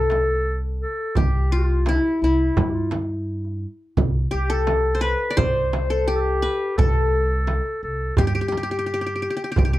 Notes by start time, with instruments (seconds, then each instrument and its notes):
Already playing: upright bass C2, qanun D4 G4 A4 B4, clarinet A4
0.10 darbuka tek, frame drum
0.80 clarinet A4
1.15 upright bass C2, clarinet G4, qanun G4, darbuka dum, frame drum
1.52 clarinet F4, qanun F4
1.86 clarinet E4, qanun E4, darbuka tek, frame drum
1.94 clarinet D4
2.00 clarinet E4
2.22 upright bass C2, clarinet E4, qanun E4
2.57 upright bass G2, darbuka dum, frame drum
2.69 clarinet F4 G4
2.91 darbuka tek, frame drum
3.45 darbuka ka
3.97 upright bass C2, frame drum, darbuka dum
4.31 upright bass C2, qanun G4, clarinet G4
4.50 qanun A4, clarinet A4
4.67 darbuka tek, frame drum
4.86 darbuka ka
4.95 qanun C5
5.01 qanun B4, clarinet B4
5.30 qanun D5
5.37 upright bass C2, qanun C5, clarinet C5, frame drum, darbuka dum
5.73 darbuka tek, frame drum
5.90 qanun A4
6.07 clarinet G4, qanun G4
6.15 clarinet A4
6.20 clarinet G4
6.26 darbuka ka
6.42 qanun B4
6.77 upright bass C2, clarinet A4, qanun A4, frame drum, darbuka dum
7.47 darbuka tek, frame drum
7.65 darbuka ka
7.83 upright bass C2, clarinet A4
8.17 upright bass G2, clarinet G4, qanun G4, darbuka dum, frame drum
8.27 qanun G4
8.35 qanun G4
8.41 qanun G4
8.48 qanun G4, darbuka tek
8.52 frame drum
8.57 qanun G4
8.63 qanun G4
8.71 qanun G4
8.79 qanun G4
8.86 qanun G4, darbuka ka
8.94 qanun G4
9.01 qanun G4
9.06 qanun G4
9.16 qanun G4
9.22 qanun G4
9.30 qanun G4
9.37 qanun G4, darbuka ka
9.44 qanun G4
9.52 qanun G4
9.56 upright bass C2, qanun G4, darbuka dum, frame drum
9.65 qanun G4
9.73 qanun G4